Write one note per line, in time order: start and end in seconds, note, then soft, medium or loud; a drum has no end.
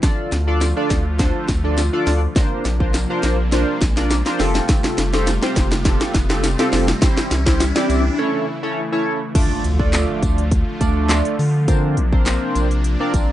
0.03 2.34 D3 medium
0.03 2.34 F3 medium
0.03 2.34 A3 medium
0.03 0.30 D4 medium
0.03 0.30 F4 medium
0.03 2.34 F4 medium
0.03 0.30 A4 medium
0.03 0.30 D5 loud
0.03 kick loud
0.03 snare medium
0.03 closed hi-hat loud
0.03 tambourine medium
0.03 riser medium
0.32 0.74 D2 medium
0.32 snare medium
0.32 closed hi-hat medium
0.32 tambourine soft
0.47 0.65 D4 medium
0.47 0.65 F4 medium
0.47 0.65 A4 medium
0.47 0.65 D5 loud
0.61 snare medium
0.61 closed hi-hat medium
0.61 tambourine medium
0.77 1.04 D4 medium
0.77 1.04 F4 medium
0.77 1.04 A4 medium
0.77 1.04 D5 loud
0.90 1.32 D2 medium
0.90 kick loud
0.90 snare medium
0.90 closed hi-hat medium
0.90 tambourine medium
1.19 1.47 D4 medium
1.19 1.47 F4 medium
1.19 1.47 A4 medium
1.19 1.47 C5 loud
1.19 kick loud
1.19 snare medium
1.19 closed hi-hat loud
1.19 tambourine soft
1.48 1.90 D2 loud
1.48 kick medium
1.48 snare medium
1.48 closed hi-hat medium
1.48 tambourine medium
1.64 1.81 D4 medium
1.64 1.81 F4 medium
1.64 1.82 A4 medium
1.64 1.82 D5 loud
1.78 snare medium
1.78 closed hi-hat loud
1.78 tambourine loud
1.93 2.20 D4 medium
1.93 2.20 F4 medium
1.93 2.20 A4 medium
1.93 2.20 D5 loud
2.07 2.28 D2 loud
2.07 snare loud
2.07 open hi-hat medium
2.07 tambourine soft
2.36 8.14 C3 medium
2.36 4.38 F3 medium
2.36 4.38 A#3 medium
2.36 2.63 D4 medium
2.36 4.38 D4 medium
2.36 2.63 F4 medium
2.36 2.63 A#4 medium
2.36 2.63 C5 loud
2.36 kick loud
2.36 snare loud
2.36 closed hi-hat medium
2.36 tambourine medium
2.65 3.07 A#1 loud
2.65 snare medium
2.65 closed hi-hat medium
2.80 2.98 D4 medium
2.80 2.98 F4 medium
2.80 2.98 A#4 medium
2.80 2.98 C5 loud
2.80 kick medium
2.94 snare loud
2.94 closed hi-hat loud
2.94 tambourine medium
3.10 3.37 D4 medium
3.10 3.37 F4 medium
3.10 3.37 A#4 medium
3.10 3.37 C5 loud
3.23 3.65 A#1 medium
3.23 snare loud
3.23 closed hi-hat medium
3.23 tambourine medium
3.52 3.80 D4 medium
3.52 3.80 F4 medium
3.52 3.80 A#4 medium
3.52 3.80 C5 loud
3.52 snare loud
3.52 closed hi-hat loud
3.52 tambourine soft
3.82 4.23 A#1 loud
3.82 kick medium
3.82 snare loud
3.82 closed hi-hat medium
3.82 tambourine medium
3.97 4.14 D4 medium
3.97 4.14 F4 medium
3.97 4.15 A#4 medium
3.97 4.15 D5 loud
3.97 snare loud
4.11 snare loud
4.11 closed hi-hat loud
4.11 tambourine loud
4.26 4.40 D4 medium
4.26 4.39 F4 medium
4.26 4.40 A#4 medium
4.26 4.40 C5 loud
4.26 snare loud
4.40 4.61 F1 loud
4.40 8.15 G3 medium
4.40 6.99 A3 medium
4.40 4.98 C4 medium
4.40 6.99 F4 medium
4.40 4.98 F4 medium
4.40 4.98 G4 medium
4.40 4.98 A4 loud
4.40 snare loud
4.40 open hi-hat medium
4.40 tambourine soft
4.55 snare loud
4.69 kick loud
4.69 snare loud
4.69 closed hi-hat loud
4.69 tambourine medium
4.84 snare loud
4.98 5.40 F1 loud
4.98 snare loud
4.98 closed hi-hat medium
5.13 5.31 C4 medium
5.13 5.31 F4 medium
5.13 5.31 G4 medium
5.13 5.31 A4 loud
5.13 snare loud
5.27 snare loud
5.27 closed hi-hat medium
5.27 tambourine medium
5.42 5.70 C4 medium
5.42 5.70 F4 medium
5.42 5.70 G4 medium
5.42 5.70 C5 loud
5.42 snare loud
5.56 5.98 F1 medium
5.56 kick loud
5.56 snare loud
5.56 closed hi-hat medium
5.56 tambourine medium
5.72 snare loud
5.85 6.13 C4 medium
5.85 6.13 F4 medium
5.85 6.13 G4 medium
5.85 6.13 A4 loud
5.85 kick loud
5.85 snare loud
5.85 closed hi-hat loud
6.01 snare loud
6.14 6.56 F1 loud
6.14 kick medium
6.14 snare loud
6.14 closed hi-hat medium
6.14 tambourine medium
6.30 6.47 C4 medium
6.30 6.47 F4 medium
6.30 6.47 G4 medium
6.30 6.48 A4 loud
6.30 snare loud
6.44 snare loud
6.44 closed hi-hat loud
6.44 tambourine loud
6.59 6.86 C4 loud
6.59 6.86 F4 medium
6.59 6.86 G4 medium
6.59 6.86 A4 loud
6.59 snare loud
6.73 6.94 F1 loud
6.73 snare loud
6.73 open hi-hat medium
6.73 tambourine soft
6.88 snare loud
7.02 9.33 E3 medium
7.02 7.29 C4 medium
7.02 9.33 E4 medium
7.02 7.29 E4 medium
7.02 7.29 G4 medium
7.02 7.29 C5 loud
7.02 kick loud
7.02 snare loud
7.02 closed hi-hat loud
7.02 tambourine medium
7.17 snare loud
7.31 7.73 C2 loud
7.31 snare loud
7.31 closed hi-hat medium
7.31 tambourine soft
7.46 7.64 C4 medium
7.46 7.64 E4 medium
7.46 7.64 G4 medium
7.46 7.64 C5 loud
7.46 kick loud
7.46 snare loud
7.46 closed hi-hat soft
7.60 snare loud
7.60 closed hi-hat medium
7.60 tambourine medium
7.75 8.03 C4 loud
7.75 8.03 E4 medium
7.75 8.03 G4 medium
7.75 8.03 D5 loud
7.75 snare loud
7.89 8.10 C2 medium
7.89 closed hi-hat medium
7.89 tambourine medium
8.18 9.34 C#3 medium
8.18 9.34 A3 medium
8.18 8.46 C#4 medium
8.18 8.46 E4 medium
8.18 8.46 A4 medium
8.18 8.46 C#5 loud
8.63 8.80 C#4 medium
8.63 8.81 E4 medium
8.63 8.81 A4 medium
8.63 8.81 C#5 loud
8.92 9.19 C#4 medium
8.92 9.19 E4 medium
8.92 9.19 A4 medium
8.92 9.19 C#5 loud
9.35 11.66 D3 medium
9.35 13.32 F3 medium
9.35 9.62 A3 medium
9.35 11.66 A3 medium
9.35 9.62 D4 medium
9.35 11.66 F4 medium
9.35 9.62 F4 medium
9.35 9.62 A4 medium
9.35 9.62 D5 loud
9.35 kick loud
9.35 closed hi-hat loud
9.35 crash loud
9.35 tambourine medium
9.35 impact medium
9.64 10.06 D2 loud
9.64 closed hi-hat medium
9.64 tambourine soft
9.79 10.43 A3 medium
9.79 10.43 D4 medium
9.79 10.43 F4 medium
9.79 10.43 A4 medium
9.79 10.43 D5 loud
9.79 kick medium
9.93 snare medium
9.93 clap loud
9.93 closed hi-hat medium
9.93 tambourine medium
10.23 10.64 D2 medium
10.23 kick loud
10.23 closed hi-hat medium
10.23 tambourine medium
10.38 closed hi-hat medium
10.51 kick loud
10.51 closed hi-hat loud
10.51 tambourine soft
10.81 11.22 D2 medium
10.81 11.35 A3 medium
10.81 11.35 D4 medium
10.81 11.35 F4 medium
10.81 11.35 A4 medium
10.81 11.35 D5 loud
10.81 kick medium
10.81 closed hi-hat medium
10.81 tambourine medium
11.09 snare loud
11.09 clap loud
11.09 closed hi-hat loud
11.09 tambourine loud
11.25 closed hi-hat medium
11.39 11.99 D3 loud
11.39 open hi-hat medium
11.39 tambourine soft
11.68 13.32 C3 medium
11.68 13.32 A#3 medium
11.68 11.95 C4 medium
11.68 11.95 D4 medium
11.68 13.32 D4 medium
11.68 11.95 F4 medium
11.68 11.95 A#4 medium
11.68 11.96 C5 loud
11.68 kick loud
11.68 closed hi-hat loud
11.68 tambourine medium
11.97 12.39 A#1 loud
11.97 closed hi-hat medium
12.13 12.67 C4 medium
12.13 12.67 D4 medium
12.13 12.67 F4 medium
12.13 12.67 A#4 medium
12.13 12.67 C5 loud
12.13 kick medium
12.26 snare medium
12.26 clap loud
12.26 closed hi-hat medium
12.26 tambourine medium
12.55 12.97 A#1 medium
12.55 closed hi-hat medium
12.55 tambourine medium
12.71 closed hi-hat medium
12.84 closed hi-hat loud
12.84 tambourine soft
13.00 13.32 C4 medium
13.00 13.32 D4 medium
13.00 13.32 F4 medium
13.00 13.32 A#4 medium
13.00 13.32 D5 loud
13.14 13.32 A#1 loud
13.14 kick medium
13.14 closed hi-hat medium
13.14 tambourine medium